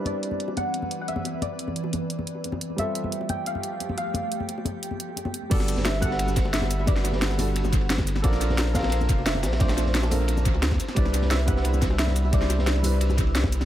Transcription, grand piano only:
\new Staff \with { instrumentName = "Grand piano" } { \time 4/4 \key g \major \tempo 4 = 176 <g c' d' e' b'>1~ | <g c' d' e' b'>2.~ <g c' d' e' b'>8 r8 | <g c' f' g' a'>1~ | <g c' f' g' a'>1 |
<g b d' fis' a'>4. <g b d' fis' a'>2~ <g b d' fis' a'>8 | <g b d' fis' b'>4. <g b d' fis' a'>2~ <g b d' fis' a'>8 | <c' d' f' a' bes'>4. <c' d' f' a' bes'>2~ <c' d' f' a' bes'>8 | <a c' d' f' c''>4. <c' d' f' a' bes'>2 r8 |
<g c' d' e' b'>4. <g c' d' e' b'>2~ <g c' d' e' b'>8 | <g c' d' e' c''>4. <g c' d' e' b'>2~ <g c' d' e' b'>8 | }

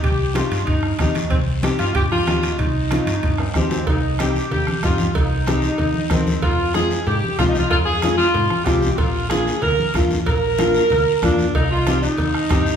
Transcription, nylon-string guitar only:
\new Staff \with { instrumentName = "Nylon-string guitar" } { \time 4/4 \key c \minor \tempo 4 = 188 r4 <c' ees' g'>8 r4. <c' ees' g'>8 r8 | r4 <c' ees' g'>8 r4. <c' ees' g'>8 r8 | r4 <c' ees' f'>8 r4. <c' ees' g'>8 r8 | r4 <c' ees' g'>8 r4. <c' ees' g'>8 r8 |
r4 <c' ees' g'>8 r4. <c' ees' bes'>8 r8 | r4 <aes c' f'>8 r4. <aes c' f'>8 r8 | r4 <aes c' f'>8 r4. <aes c' f'>8 r8 | r4 <bes d' f'>8 r4. <bes d' f'>8 r8 |
r4 <bes d' f'>8 r4. <bes d' f'>8 r8 | r4 <c' ees' g'>8 r4. <c' ees' g'>8 r8 | }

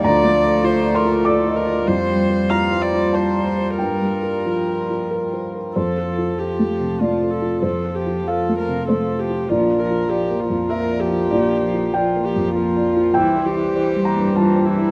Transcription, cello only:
\new Staff \with { instrumentName = "Cello" } { \clef bass \time 3/4 \key g \dorian \tempo 4 = 97 a2. | g2.~ | g4 f4. r8 | \key f \major f8 f8 f8 f8 f8 f8 |
f8 f8 f8 f8 f8 f8 | f8 f8 f8 f8 f8 f8 | f8 f8 f8 f8 f8 f8 | e8 e8 e8 e8 e8 e8 | }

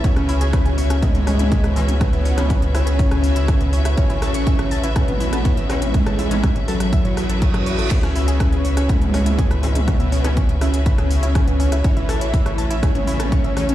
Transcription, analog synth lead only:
\new Staff \with { instrumentName = "Analog synth lead" } { \time 4/4 \key cis \minor \tempo 4 = 122 cis'2 gis2 | b4. cis'2~ cis'8 | cis'2 b2 | gis4. fis2~ fis8 |
cis'2 gis2 | b4. cis'2~ cis'8 | e'2 cis'2 | }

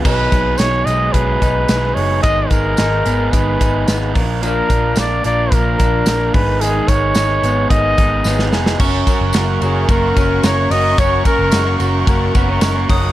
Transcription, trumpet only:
\new Staff \with { instrumentName = "Trumpet" } { \time 4/4 \key ges \major \tempo 4 = 110 b'4 des''8 dis''8 b'4. des''8 | ees''8 bes'4. ces''4. r8 | bes'4 d''8 d''8 bes'4. ces''8 | aes'8 des''4. ees''4. r8 |
r4. aes'8 bes'4 des''8 ees''8 | des''8 bes'4 r2 r8 | }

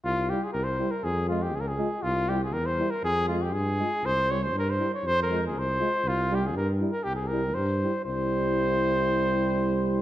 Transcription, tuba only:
\new Staff \with { instrumentName = "Tuba" } { \clef bass \time 2/4 \tempo 4 = 120 c,4 c,4 | f,4 des,4 | c,4 e,4 | f,4 g,4 |
c,4 g,4 | f,4 c,4 | c,4 g,4 | c,4 g,4 |
c,2~ | c,2 | }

